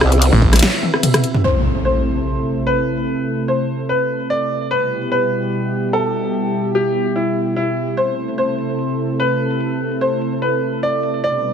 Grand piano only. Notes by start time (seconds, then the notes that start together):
1.44 C5
1.85 C5
2.67 B4
3.48 C5
3.89 B4
4.30 D5
4.71 B4
5.12 B4
5.93 A4
6.75 G4
7.16 E4
7.56 E4
7.97 C5
8.38 C5
9.20 B4
10.01 C5
10.42 B4
10.83 D5
11.24 D5